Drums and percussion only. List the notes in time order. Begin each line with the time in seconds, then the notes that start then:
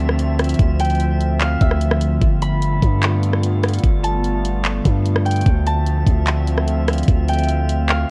0.09 cross-stick
0.19 closed hi-hat
0.39 cross-stick, closed hi-hat
0.44 closed hi-hat
0.49 closed hi-hat
0.54 closed hi-hat
0.59 kick, closed hi-hat
0.80 closed hi-hat
0.85 closed hi-hat
0.90 closed hi-hat
0.95 closed hi-hat
1.00 closed hi-hat
1.20 closed hi-hat
1.40 clap, closed hi-hat
1.61 kick, closed hi-hat
1.71 cross-stick
1.81 closed hi-hat
1.91 cross-stick
2.01 closed hi-hat
2.22 kick, closed hi-hat
2.42 closed hi-hat
2.62 closed hi-hat
2.82 kick, closed hi-hat
3.02 clap, closed hi-hat
3.23 closed hi-hat
3.33 cross-stick
3.43 closed hi-hat
3.63 cross-stick, closed hi-hat
3.69 closed hi-hat
3.74 closed hi-hat
3.79 closed hi-hat
3.84 kick, closed hi-hat
4.04 closed hi-hat
4.24 closed hi-hat
4.45 closed hi-hat
4.65 clap, closed hi-hat
4.85 kick, closed hi-hat
5.06 closed hi-hat
5.16 cross-stick
5.26 closed hi-hat
5.31 closed hi-hat
5.36 closed hi-hat
5.41 closed hi-hat
5.46 kick, closed hi-hat
5.66 closed hi-hat
5.86 closed hi-hat
6.07 kick, closed hi-hat
6.27 clap, closed hi-hat
6.47 closed hi-hat
6.58 cross-stick
6.68 closed hi-hat
6.88 cross-stick, closed hi-hat
6.93 closed hi-hat
6.98 closed hi-hat
7.03 closed hi-hat
7.08 kick, closed hi-hat
7.28 closed hi-hat
7.33 closed hi-hat
7.39 closed hi-hat
7.43 closed hi-hat
7.49 closed hi-hat
7.69 closed hi-hat
7.89 clap, closed hi-hat